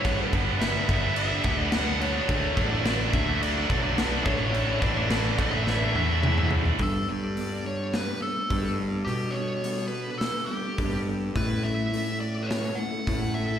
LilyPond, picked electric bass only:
\new Staff \with { instrumentName = "Picked electric bass" } { \clef bass \time 4/4 \key g \lydian \tempo 4 = 106 g,,16 r16 g,,4 g,,4 d,4. | d,8 a,,4 d,4 b,,4 a,,8~ | a,,8 a,,4 a,,4 e,4. | g,8 g,2 r8 g,4 |
b,2 r4 g,4 | a,8 a,2 r8 a,4 | }